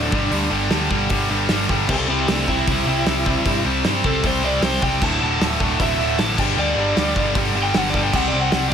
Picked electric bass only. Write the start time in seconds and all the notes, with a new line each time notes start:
0.12 G1
0.31 D2
0.51 G1
0.71 D2
0.90 G1
1.10 G1
1.31 G1
1.50 G1
1.69 G1
1.89 C2
2.08 C2
2.28 C2
2.48 C2
2.67 C2
2.86 C2
3.06 C2
3.46 G2
3.64 C2
3.84 G2
4.04 C2
4.23 C2
4.42 C2
4.61 C2
4.82 C2
5.02 D1
5.21 D1
5.40 D1
5.60 D1
5.80 D1
5.98 D1
6.19 A1
6.38 G1
6.56 D2
6.76 G1
6.97 D2
7.16 G1
7.35 G1
7.55 G1
7.75 G1
7.94 G1
8.13 C2
8.33 C2
8.52 C2